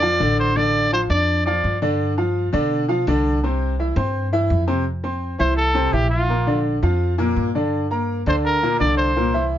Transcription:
Already playing: F2 D5
0.02 F3 F4 F5
0.20 A1 D3 D4 D5
0.39 C5
0.56 D3 D4 D5
0.92 F3 F4 C5 F5
1.10 F2 D4 D5 D6
1.46 F3 F4 D5 F5
1.64 G2
1.82 D3 D4 D5
2.18 F3 F4 F5
2.53 B2 D3 D4 D5
2.88 F3 F4 F5
3.07 C2 D3 D4 D5
3.43 C3 C4 C5
3.79 E3 E4 E5
3.96 G2 C4 C5 C6
4.32 E3 E4 E5
4.50 F2
4.67 C3 C4 C5
5.04 C4 C5 C6
5.39 C2 E3 E4 C5 E5
5.57 A4
5.74 C3 C4 C5
5.93 A#1 E3 E4 G4 E5
6.10 F4
6.29 A#2 A#3 A#4
6.47 D3 D4 D5
6.83 F2 F3 F4 F5
7.18 A#2 A#3 A#4
7.36 G2
7.55 D3 D4 D5
7.91 A#3 A#4 A#5
8.26 D2 D3 D4 C5 D5
8.45 A#4
8.63 A#2 A#3 A#4
8.80 C2 D3 D4 D5
8.97 C5
9.16 A#2 A#3 A#4
9.34 E3 E4 E5

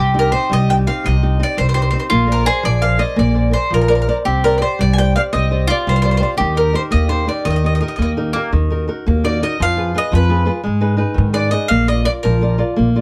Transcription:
Already playing: C2 C3 G4
0.14 C4 D#4 G4
0.19 A#4
0.32 C4 D#4 G4 C5
0.50 C2 G3 D#5
0.69 C4 D#4 G4 G5
0.87 C4 D#4 G4 F5
1.04 C2 C3 D#5
1.22 C4 D#4 G4
1.39 C4 D#4 G4 D5
1.57 C2 G3 C5
1.69 C5
1.74 C4 D#4 G4 C5
1.82 C5
1.91 C4 D#4 G4 C5
2.00 C5
2.10 A#1 A#3 F4
2.27 A#4 C5 D5
2.32 A#4
2.45 G#4 A#4 C5 D5
2.63 A#1 F3 D5
2.81 A#4 C5 D5 F5
2.98 A#4 C5 D5 D#5
3.16 A#1 A#3 D5
3.34 A#4 C5 D5
3.51 A#4 C5 D5
3.70 A#1 F3 A#4
3.81 A#4
3.88 A#4 C5 D5
3.95 A#4
4.02 A#4
4.08 A#4 C5 D5
4.25 C2 C4 G4
4.44 G4 A#4 C5 D5
4.58 G4 C5 D5
4.62 C5
4.79 C2 G3 D5
4.93 G#5
4.98 G4 C5 D5 G5
5.16 G4 C5 D5 F5
5.33 C2 C4 D#5
5.51 G4 C5 D5
5.67 F4 G4 C5 D5
5.87 C2 G3 C5
5.96 C5
6.02 G4 C5 D5
6.11 C5
6.17 G4 C5 D5
6.23 C5
6.37 D#2 D#3 G4
6.55 D#4 G4 A#4
6.73 D#4 G4 A#4 C5
6.91 D#2 A#3 D#5
7.08 D#4 G4 A#4 C5
7.27 D#4 G4 A#4 D5
7.45 D#2 D#3 D#5
7.50 D#5
7.56 D#5
7.64 D#4 G4 A#4 D#5
7.75 D#5
7.81 D#4 G4 A#4 D#5
7.88 D#5
7.96 D#2 A#3 D#5
8.02 D#5
8.17 D#4 G4 A#4
8.33 A#3 D#4 G4 A#4
8.53 D#2 D#3
8.70 D#4 F#4 A#4
8.88 D#4 F#4 A#4
9.06 D#2 A#3
9.24 D#4 F#4 A#4 D5
9.42 D#4 F#4 A#4 D#5
9.60 F2 F3 F5
9.77 F4 G#4 B4
9.94 F4 G#4 B4 D#5
10.12 F2 F3 B4
10.29 F4 G#4 B4
10.46 F4 G#4 B4
10.64 G#2 G#3
10.81 D#4 G#4 B4
10.97 D#4 G#4 B4
11.14 G#2 D#3
11.33 D#4 G#4 B4 D5
11.51 D#4 G#4 B4 D#5
11.68 A#1 A#3 F5
11.88 F4 A#4 D5 D#5
12.04 F4 A#4 D5
12.23 A#1 F3 A#4
12.41 F4 A#4 D5
12.58 F4 A#4 D5
12.76 A#1 A#3
12.96 F4 A#4 D5

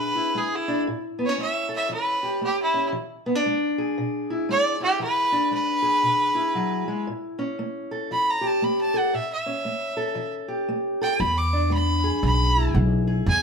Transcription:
Already playing: B2 D4 G#4 B4
0.15 E4
0.35 G#3 G#4
0.55 E4
0.68 D4
0.87 A2
1.19 B3
1.25 C#4 C#5
1.38 A3 E5
1.69 A4
1.76 E5
1.89 E3 B4
2.23 G4
2.41 A3 G4
2.62 E4
2.74 C#4
2.92 E3
3.26 B3
3.35 D4
3.46 G#3
3.78 G#4
3.98 B2
4.30 E4
4.49 G#3 D5
4.80 E4 G4
4.99 E3 B4
5.32 D4
5.51 G#3 B4
5.82 G#4
6.03 B2
6.35 E4
6.55 F#3
6.88 G#3
7.07 A2
7.39 C#4
7.59 A3
7.91 A4
8.11 E3 B5
8.30 A#5
8.41 G4
8.46 A5
8.62 A3 B5
8.81 A5
8.94 A4
8.98 F#5
9.13 A2 E5
9.33 E5
9.46 C#4
9.65 A3
9.97 A4
10.15 E3
10.48 G4
10.68 A3
11.01 A4 G5
11.20 E2 E3 B5
11.37 D6
11.53 D4
11.70 G#3 B5
12.04 G#4
12.23 B1 B2 B5
12.57 E4
12.75 B1 G#3
13.07 G#4
13.26 E2 E3 G#5

